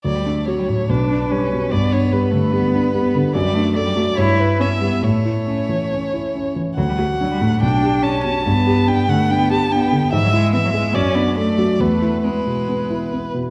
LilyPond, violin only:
\new Staff \with { instrumentName = "Violin" } { \time 4/4 \key g \lydian \tempo 4 = 142 d''4 cis''4 b'2 | d''8 cis''8 b'2. | d''4 d''4 cis''8 b'8 e''4 | cis''2.~ cis''8 r8 |
fis''2 g''4 a''8 a''8~ | a''4 g''8 fis''8 g''8 a''8 g''4 | \key e \mixolydian e''4 e''4 d''4 d''4 | b'4 b'2~ b'8 r8 | }